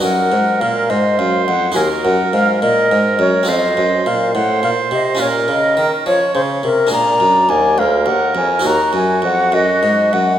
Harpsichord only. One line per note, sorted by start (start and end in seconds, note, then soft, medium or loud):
0.00 0.29 F#2 soft
0.00 1.69 D#4 soft
0.00 1.70 F#4 soft
0.00 1.71 A#4 soft
0.32 0.58 G#2 soft
0.61 0.87 A#2 medium
0.90 1.16 G#2 medium
1.19 1.45 F#2 medium
1.48 1.73 F2 medium
1.72 3.42 D#4 soft
1.72 3.42 F#4 medium
1.72 3.43 A#4 soft
1.76 2.02 D#2 medium
2.05 2.30 F#2 medium
2.33 2.59 G#2 medium
2.62 2.88 A#2 medium
2.92 3.17 G#2 medium
3.19 3.45 F#2 medium
3.43 3.73 C4 medium
3.43 5.15 F4 soft
3.43 5.15 A4 medium
3.48 3.74 F2 medium
3.77 4.03 F#2 medium
4.06 4.32 A#2 medium
4.35 4.60 A2 medium
4.63 4.89 A#2 medium
4.91 5.17 C3 medium
5.15 6.86 C#4 soft
5.15 6.87 F4 soft
5.15 6.87 A#4 soft
5.19 5.45 A#2 medium
5.48 5.74 C#3 medium
5.77 6.03 D#3 medium
6.06 6.32 F3 medium
6.35 6.61 C#3 medium
6.63 6.90 C3 medium
6.87 8.59 D4 medium
6.87 8.60 G#4 medium
6.87 8.60 A#4 soft
6.91 7.18 A#2 medium
7.20 7.47 F#2 soft
7.49 7.76 D#2 medium
7.78 8.04 D2 medium
8.06 8.33 D#2 medium
8.35 8.62 F2 medium
8.59 10.37 D#4 soft
8.59 10.37 F#4 medium
8.59 10.38 A#4 medium
8.64 8.91 D#2 medium
8.93 9.20 F#2 medium
9.22 9.50 F2 medium
9.52 9.80 F#2 medium
9.83 10.10 G#2 medium
10.13 10.39 F#2 medium